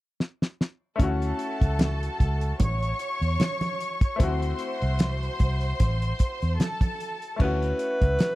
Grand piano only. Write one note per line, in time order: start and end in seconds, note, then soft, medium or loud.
0.96 4.14 A3 medium
0.96 4.15 C#4 medium
1.01 4.17 E4 medium
1.01 4.18 F#4 medium
4.16 7.34 A3 medium
4.16 7.35 C4 medium
4.21 7.36 E4 medium
4.21 7.38 F#4 medium
7.36 8.35 A3 medium
7.36 8.35 C#4 soft
7.41 8.35 E4 medium
7.41 8.35 F#4 medium